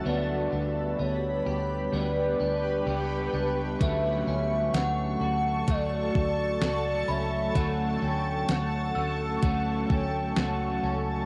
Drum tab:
HH |--------|x-x-x-x-|x-x-x-x-|
SD |--------|--o---o-|--o---o-|
BD |--------|o---oo--|o---oo--|